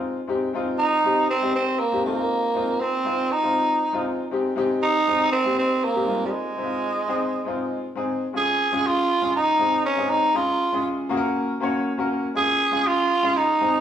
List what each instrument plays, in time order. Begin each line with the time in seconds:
Already playing: grand piano G#3 C4 D#4 F4
0.27 grand piano G#3 C4 D#4 G4
0.53 grand piano G#3 C4 D#4 F4
0.79 tenor saxophone D#4
1.04 grand piano G#3 C4 D#4 G4
1.30 tenor saxophone C4
1.41 grand piano G#3 C4 D#4 G4
1.55 tenor saxophone C4
1.80 tenor saxophone A#3
1.92 grand piano G#3 C4 D#4 G4
2.05 grand piano G#3 C4 D#4 F4, tenor saxophone A#3
2.55 grand piano G#3 C4 D#4 F4
2.81 tenor saxophone C4
3.04 grand piano G#3 C4 D#4 F4
3.31 tenor saxophone D#4
3.42 grand piano G#3 C4 D#4 F4
3.93 grand piano G#3 C4 D#4 F4
4.31 grand piano G#3 C4 D#4 G4
4.56 grand piano G#3 C4 D#4 G4
4.82 tenor saxophone D#4
5.07 grand piano G#3 C4 D#4 G#4
5.32 tenor saxophone C4
5.44 grand piano G#3 A#3 D#4 G4
5.51 grand piano C4
5.58 tenor saxophone C4
5.84 tenor saxophone A#3
5.94 grand piano G#3 C4 D#4 G4
6.06 grand piano G3 C4 D#4 F4
6.12 grand piano G#3
6.26 tenor saxophone G3
6.32 tenor saxophone G#3
6.57 grand piano G#3 C4 D#4 E4
6.65 grand piano F4
7.07 grand piano G#3 C4 D#4 G#4
7.45 grand piano G#3 C4 D#4 F4
7.95 grand piano G#3 C4 D#4 G#4
8.33 grand piano G#3 C#4 F4 G#4, tenor saxophone G#4
8.72 grand piano G#3 C#4 F4 G#4
8.87 tenor saxophone F4
9.22 grand piano G#3 C#4 F4 G#4
9.36 tenor saxophone D#4
9.59 grand piano G#3 C4 D#4 G#4
9.86 tenor saxophone C#4
9.97 grand piano G#3 C4 D#4 G#4
10.10 tenor saxophone D#4
10.34 grand piano G#3 C#4 F4 G#4, tenor saxophone F4
10.72 grand piano G#3 C#4 E4 G#4
10.79 grand piano F4
11.09 grand piano A#3 C#4 F#4 G#4
11.17 grand piano A#4
11.60 grand piano A#3 C#4 F#4 C#5
11.97 grand piano A#3 C#4 F#4 A#4
12.35 grand piano G#3 C#4 F4 G#4, tenor saxophone G#4
12.71 grand piano G#3 C#4 F4 G#4
12.87 tenor saxophone F4
13.23 grand piano G#3 C#4 F4 G#4
13.37 tenor saxophone D#4
13.61 grand piano G#3 C4 D#4 G#4